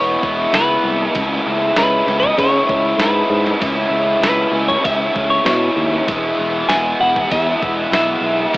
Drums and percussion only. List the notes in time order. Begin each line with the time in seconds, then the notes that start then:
0.23 kick
0.54 snare, open hi-hat
1.15 kick, open hi-hat
1.76 snare, open hi-hat
2.08 snare
2.23 kick
2.39 kick, open hi-hat
2.69 kick
3.00 snare, open hi-hat
3.47 snare
3.62 kick, open hi-hat
4.23 snare, open hi-hat
4.70 kick
4.85 kick, open hi-hat
5.16 kick
5.46 snare, open hi-hat
6.08 kick, open hi-hat
6.69 snare, open hi-hat
7.16 kick
7.31 kick, open hi-hat
7.63 kick
7.93 snare, open hi-hat
8.54 kick, open hi-hat